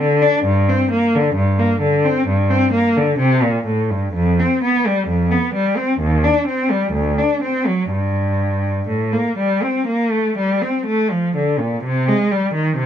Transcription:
0.00 D3
0.22 D4
0.45 G2
0.69 C4
0.92 A#3
1.15 D3
1.35 G2
1.59 A#3
1.81 D3
2.05 C4
2.28 G2
2.50 C4
2.73 A#3
2.96 D3
3.19 C3
3.43 A#2
3.66 A2
3.90 G2
4.14 F2
4.39 C4
4.64 B3
4.87 G3
5.08 F2
5.32 B3
5.55 G3
5.77 C4
6.00 D#2
6.24 D4
6.47 C4
6.70 G3
6.92 D2
7.19 D4
7.43 C4
7.67 F#3
7.91 G2
8.88 A2
9.13 A#3
9.38 G3
9.63 C4
9.87 A#3
10.12 A3
10.38 G3
10.62 C4
10.87 A3
11.11 F3
11.36 D3
11.60 A#2
11.84 C3
12.08 G#3
12.31 G3
12.55 D#3
12.77 C3

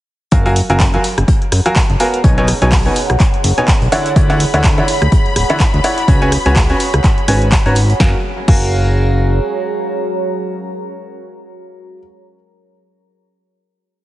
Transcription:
0.31 F#1 F#3 F#4 G#4 A#4 F5 G#5, kick, closed hi-hat
0.45 F#3 F#4 A#4 F5 F#5 G#5, closed hi-hat
0.50 C#5
0.56 closed hi-hat, open hi-hat
0.70 F#1 F#3 F#4 A#4 F5 G#5, closed hi-hat
0.79 kick, snare, clap, closed hi-hat
0.94 F#3 F#4 A#4 F5 G#5, closed hi-hat
1.00 A#5
1.04 closed hi-hat, open hi-hat
1.18 F#1, cross-stick, closed hi-hat
1.28 kick, closed hi-hat
1.42 closed hi-hat
1.52 F#2, cross-stick, closed hi-hat, open hi-hat
1.66 F#3 F#4 A#4 F5 G#5, closed hi-hat
1.76 kick, snare, clap, closed hi-hat
1.90 F#1, closed hi-hat
2.00 B3 F#4 A#4 F5 G#5, closed hi-hat, open hi-hat
2.14 closed hi-hat
2.24 B1 B2 D#4 B4 C#5 G#5, kick, closed hi-hat
2.38 B2 D#4 B4 C#5 G#5, closed hi-hat
2.47 cross-stick, closed hi-hat, open hi-hat
2.62 B1 B2 D#4 B4 C#5 G#5, closed hi-hat
2.72 kick, snare, clap, closed hi-hat, open hi-hat
2.86 B2 D#4 B4 C#5 G#5, closed hi-hat
2.96 closed hi-hat, open hi-hat
3.10 B1, cross-stick, closed hi-hat
3.20 kick, clap, closed hi-hat
3.34 closed hi-hat
3.44 F#1, closed hi-hat, open hi-hat
3.58 B2 D#4 B4 C#5 G#5, closed hi-hat
3.68 kick, snare, clap, closed hi-hat
3.82 B1, closed hi-hat
3.92 D3 E4 C#5 D5 F#5, closed hi-hat, open hi-hat
4.06 closed hi-hat
4.16 D2 D3 E4 C#5 D5 F#5 B5, kick, closed hi-hat
4.24 B5
4.30 D3 E4 C#5 D5 F#5, closed hi-hat
4.40 closed hi-hat, open hi-hat
4.54 D2 D3 E4 C#5 D5 F#5, closed hi-hat
4.64 kick, snare, clap, closed hi-hat
4.78 D3 E4 C#5 D5 F#5, closed hi-hat
4.88 closed hi-hat, open hi-hat
5.02 D2, cross-stick, closed hi-hat
5.12 kick, closed hi-hat
5.26 closed hi-hat
5.36 D1, cross-stick, closed hi-hat, open hi-hat
5.50 D3 E4 C#5 D5 F#5, closed hi-hat
5.60 kick, snare, clap, closed hi-hat
5.74 D2, closed hi-hat
5.84 E4 C#5 D5 F#5, closed hi-hat, open hi-hat
5.98 closed hi-hat
6.08 C#2 C#4 F#4 B4 C#5 G#5, kick, closed hi-hat
6.22 C#4 F#4 B4 C#5 G#5, closed hi-hat
6.32 cross-stick, closed hi-hat, open hi-hat
6.46 C#2 C#4 F#4 B4 C#5 G#5, closed hi-hat
6.56 kick, snare, clap, closed hi-hat, open hi-hat
6.70 C#4 F#4 B4 C#5 G#5, closed hi-hat
6.80 closed hi-hat, open hi-hat
6.94 C#2, cross-stick, closed hi-hat
7.04 kick, clap, closed hi-hat
7.18 closed hi-hat
7.28 G#1 C#4 F#4 B4 C#5 G#5, closed hi-hat, open hi-hat
7.42 closed hi-hat
7.52 kick, snare, clap, closed hi-hat
7.65 G#1 C#4 F#4 B4 C#5 A#5, closed hi-hat
7.75 closed hi-hat, open hi-hat
7.90 closed hi-hat
8.00 F#1 F#4 G#4 A#4 F5 G#5, kick, snare
8.08 C#5
8.16 F#4
8.22 A#5
8.48 F#1 F#4 A#4 F5 G#5, kick, crash

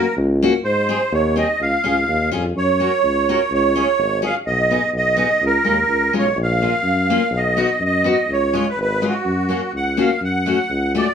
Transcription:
Already playing: A#4
0.17 C#2
0.43 A#3 C#4 F#4
0.64 G#2 C5
0.89 C4 D#4 G#4
1.12 D#2 C#5
1.36 C4 D#4 G#4 D#5
1.60 C#2 F5
1.84 C#2 C#4 F4 G#4
2.07 D#2
2.31 F2 C#4 F4 G#4
2.55 F#2 C#5
2.80 C#4 F#4 A#4
3.03 C#2
3.29 C#4 F#4 A#4
3.51 C#2 C#5
3.76 C#4 F4 G#4
3.98 G#1
4.22 C#4 F4 G#4 F5
4.46 B1 D#5
4.71 B3 D#4 G#4
4.93 B1 D#5
5.17 B3 D#4 G#4
5.41 C#2
5.46 A#4
5.64 D#2 G#3 C#4 F4
5.88 C#2
6.13 B1 G#3 C#4 F4
6.18 C#5
6.36 A#1
6.43 F5
6.62 A#3 C#4 F4
6.83 F#2
7.10 A#3 C#4 F4
7.30 B1
7.37 D#5
7.57 B3 D#4 F#4
7.79 F#2
7.85 D#5
8.04 B3 D#4 F#4
8.11 D#5
8.28 C#2
8.32 C#5
8.53 G#3 C#4 F4
8.69 B4
8.77 G#1
8.81 B4
9.02 G#3 C#4 F4
9.08 F#4
9.25 F#2
9.49 A#3 C#4 F#4
9.72 C#2 F#5
9.97 A#3 C#4 F#4 F5
10.21 F#2 F#5
10.46 A3 C#4 F#4
10.70 C#2
10.95 A3 C#4 F#4 D5

